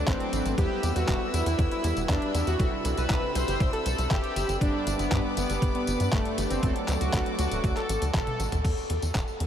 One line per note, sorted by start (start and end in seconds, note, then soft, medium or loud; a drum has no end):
0.00 0.55 F#3 medium
0.00 0.55 A3 medium
0.00 0.55 D4 medium
0.00 0.56 A4 medium
0.00 0.55 B4 loud
0.00 0.54 D5 medium
0.00 0.56 F#5 medium
0.00 0.54 D6 loud
0.07 0.17 A1 loud
0.07 0.53 C4 loud
0.07 kick loud
0.07 clap loud
0.07 closed hi-hat medium
0.07 tambourine soft
0.20 closed hi-hat soft
0.33 0.42 A1 medium
0.33 closed hi-hat medium
0.33 tambourine medium
0.45 0.54 A1 medium
0.45 closed hi-hat soft
0.45 tambourine soft
0.58 0.67 E2 loud
0.58 1.43 G3 medium
0.58 1.43 B3 medium
0.58 1.43 E4 medium
0.58 0.92 G4 loud
0.58 2.58 B4 medium
0.58 1.43 B4 loud
0.58 4.57 E5 medium
0.58 6.59 B5 medium
0.58 2.58 E6 medium
0.58 kick loud
0.58 closed hi-hat medium
0.58 tambourine soft
0.83 0.92 E2 loud
0.83 closed hi-hat medium
0.83 tambourine medium
0.96 1.05 E2 medium
0.96 1.30 F#4 loud
0.96 closed hi-hat soft
0.96 tambourine soft
1.08 1.17 E1 loud
1.08 kick loud
1.08 clap loud
1.08 closed hi-hat medium
1.08 tambourine soft
1.34 1.43 E2 medium
1.34 1.68 E4 loud
1.34 closed hi-hat medium
1.34 tambourine medium
1.46 1.55 E2 medium
1.46 2.31 G3 medium
1.46 2.31 B3 medium
1.46 2.31 E4 medium
1.46 2.31 G4 medium
1.46 closed hi-hat medium
1.46 tambourine soft
1.59 1.68 E2 loud
1.59 kick loud
1.59 closed hi-hat medium
1.59 tambourine soft
1.71 2.05 E4 loud
1.71 closed hi-hat soft
1.84 1.93 E2 loud
1.84 closed hi-hat medium
1.84 tambourine medium
1.97 2.06 E1 medium
1.97 closed hi-hat soft
1.97 tambourine soft
2.09 2.18 E2 loud
2.09 2.43 D4 loud
2.09 kick loud
2.09 clap loud
2.09 closed hi-hat medium
2.09 tambourine soft
2.22 closed hi-hat soft
2.34 2.44 E2 medium
2.34 2.57 C3 medium
2.34 2.57 G3 medium
2.34 2.57 B3 medium
2.34 2.57 E4 medium
2.34 2.57 G4 loud
2.34 closed hi-hat medium
2.34 tambourine medium
2.47 2.56 E2 medium
2.47 2.70 F#4 medium
2.47 closed hi-hat medium
2.47 tambourine soft
2.59 2.69 C2 loud
2.59 3.45 C3 medium
2.59 3.45 G3 medium
2.59 4.59 C4 medium
2.59 3.45 C4 medium
2.59 3.45 E4 medium
2.59 3.45 A4 loud
2.59 4.59 E6 medium
2.59 kick loud
2.59 closed hi-hat medium
2.59 tambourine soft
2.85 2.94 C2 loud
2.85 closed hi-hat medium
2.85 tambourine medium
2.98 3.07 C2 medium
2.98 3.31 B4 medium
2.98 closed hi-hat soft
2.98 tambourine soft
3.10 3.19 C2 loud
3.10 kick loud
3.10 clap loud
3.10 closed hi-hat medium
3.35 3.44 C2 loud
3.35 3.69 C5 loud
3.35 closed hi-hat medium
3.35 tambourine medium
3.48 3.57 G1 medium
3.48 3.74 C3 medium
3.48 3.74 G3 medium
3.48 3.74 C4 medium
3.48 3.74 E4 medium
3.48 3.74 G4 medium
3.48 closed hi-hat medium
3.48 tambourine soft
3.60 3.70 C2 loud
3.60 kick loud
3.60 closed hi-hat medium
3.60 tambourine soft
3.73 4.07 A4 loud
3.73 closed hi-hat soft
3.86 3.95 C2 medium
3.86 closed hi-hat medium
3.86 tambourine medium
3.98 4.08 C2 medium
3.98 closed hi-hat medium
3.98 tambourine soft
4.11 4.20 G1 loud
4.11 4.56 G4 loud
4.11 kick loud
4.11 clap loud
4.11 closed hi-hat medium
4.11 tambourine soft
4.24 closed hi-hat soft
4.36 4.45 G1 loud
4.36 closed hi-hat medium
4.36 tambourine medium
4.49 4.58 G1 medium
4.49 closed hi-hat medium
4.49 tambourine soft
4.61 4.70 G1 loud
4.61 5.46 G2 medium
4.61 5.46 G3 medium
4.61 5.47 B3 medium
4.61 5.46 D4 medium
4.61 4.95 D4 loud
4.61 5.47 G4 loud
4.61 6.61 B4 medium
4.61 8.61 D5 medium
4.61 6.61 D6 loud
4.61 kick loud
4.61 closed hi-hat medium
4.61 tambourine soft
4.87 4.96 G1 loud
4.87 closed hi-hat medium
4.87 tambourine medium
4.99 5.08 G1 medium
4.99 5.33 B3 loud
4.99 closed hi-hat medium
4.99 tambourine soft
5.12 5.21 G2 loud
5.12 kick loud
5.12 clap loud
5.12 closed hi-hat medium
5.12 tambourine soft
5.37 5.46 G1 medium
5.37 5.71 B3 loud
5.37 closed hi-hat medium
5.37 tambourine medium
5.50 5.59 G1 medium
5.50 6.35 G2 medium
5.50 6.35 G3 medium
5.50 6.35 B3 medium
5.50 6.35 D4 medium
5.50 6.35 G4 medium
5.50 closed hi-hat medium
5.50 tambourine soft
5.62 5.71 G1 loud
5.62 kick loud
5.62 closed hi-hat medium
5.62 tambourine soft
5.75 6.09 B3 loud
5.75 closed hi-hat soft
5.87 5.97 G1 loud
5.87 closed hi-hat medium
5.87 tambourine medium
6.00 6.09 G2 medium
6.00 closed hi-hat medium
6.00 tambourine soft
6.12 6.22 G1 loud
6.12 6.47 A3 loud
6.12 kick loud
6.12 clap loud
6.12 closed hi-hat medium
6.12 tambourine soft
6.25 closed hi-hat soft
6.38 6.47 G1 loud
6.38 6.60 G3 medium
6.38 6.60 B3 medium
6.38 6.60 D4 medium
6.38 6.60 G4 medium
6.38 closed hi-hat medium
6.38 tambourine medium
6.50 6.60 G1 medium
6.50 6.73 C4 medium
6.50 closed hi-hat medium
6.50 tambourine soft
6.63 6.72 D2 loud
6.63 7.48 F#3 medium
6.63 7.48 A3 medium
6.63 7.48 D4 medium
6.63 8.63 A4 medium
6.63 7.48 A4 loud
6.63 8.63 F#5 medium
6.63 8.63 D6 medium
6.63 kick loud
6.63 closed hi-hat medium
6.63 tambourine soft
6.76 closed hi-hat soft
6.88 6.97 D2 medium
6.88 clap medium
6.88 closed hi-hat medium
6.88 tambourine medium
7.01 7.10 D2 medium
7.01 7.35 F#4 loud
7.01 closed hi-hat medium
7.01 tambourine soft
7.13 7.22 D2 loud
7.13 kick loud
7.13 clap loud
7.13 closed hi-hat medium
7.13 tambourine soft
7.26 closed hi-hat soft
7.39 7.48 D2 medium
7.39 7.73 F#4 loud
7.39 closed hi-hat medium
7.39 tambourine medium
7.51 7.60 D1 medium
7.51 7.77 F#3 medium
7.51 7.77 A3 medium
7.51 7.77 D4 medium
7.51 7.77 F#4 medium
7.51 closed hi-hat medium
7.51 tambourine soft
7.64 7.73 D2 loud
7.64 kick loud
7.64 closed hi-hat medium
7.64 tambourine soft
7.76 8.10 A4 loud
7.76 clap soft
7.76 closed hi-hat soft
7.89 7.98 A1 loud
7.89 closed hi-hat medium
7.89 tambourine medium
8.02 8.11 D2 medium
8.02 closed hi-hat medium
8.02 tambourine soft
8.14 8.23 A1 loud
8.14 8.60 A4 loud
8.14 kick loud
8.14 clap loud
8.14 closed hi-hat medium
8.14 high tom medium
8.14 tambourine soft
8.27 closed hi-hat soft
8.27 high tom medium
8.40 8.49 A1 medium
8.40 closed hi-hat medium
8.40 tambourine medium
8.52 8.61 A1 medium
8.52 closed hi-hat medium
8.52 mid tom medium
8.52 tambourine soft
8.65 8.74 E2 loud
8.65 kick loud
8.65 closed hi-hat medium
8.65 crash medium
8.65 tambourine soft
8.77 tambourine soft
8.90 8.99 E2 medium
8.90 closed hi-hat medium
9.02 9.12 E2 medium
9.02 closed hi-hat soft
9.02 tambourine medium
9.15 9.24 E1 loud
9.15 kick loud
9.15 clap loud
9.15 closed hi-hat medium
9.15 tambourine soft
9.28 tambourine soft
9.40 9.47 E2 medium
9.40 closed hi-hat medium